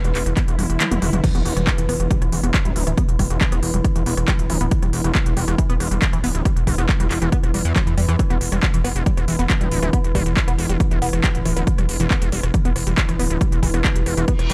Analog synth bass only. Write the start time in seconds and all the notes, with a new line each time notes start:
0.04 E1
0.15 E1
0.26 E1
0.48 E1
0.59 E1
0.70 E1
0.91 E1
1.02 E1
1.13 E1
1.35 E1
1.45 E1
1.57 E1
1.78 E1
1.89 E1
2.00 E1
2.22 E1
2.32 E1
2.44 E1
2.65 D1
2.76 D1
2.87 D1
3.09 E1
3.19 E1
3.30 E1
3.52 E1
3.63 E1
3.74 E1
3.96 E1
4.06 E1
4.17 E1
4.39 D1
4.50 D1
4.61 D1
4.83 E1
4.93 E1
5.04 E1
5.26 E1
5.37 E1
5.48 E1
5.69 E1
5.80 E1
5.91 E1
6.13 D1
6.24 D1
6.35 D1
6.56 E1
6.67 E1
6.78 E1
7.00 E1
7.11 E1
7.22 E1
7.43 E1
7.54 E1
7.65 E2
7.87 E2
7.97 E2
8.08 E2
8.30 E1
8.41 E1
8.52 E1
8.74 E1
8.84 E1
8.96 E1
9.17 E1
9.28 E1
9.39 E1
9.61 D1
9.72 D1
9.82 D1
10.04 E1
10.15 E1
10.26 E1
10.48 E1
10.58 E1
10.69 E1
10.91 E1
11.02 E1
11.13 E1
11.35 D1
11.45 D1
11.56 D1
11.78 E1
11.89 E1
12.00 E1
12.22 E1
12.32 E1
12.43 E1
12.65 E1
12.76 E1
12.87 E1
13.09 D1
13.19 D1
13.30 D1
13.52 E1
13.63 E1
13.74 E1
13.96 E1
14.06 E1
14.17 E1
14.39 E1
14.50 E1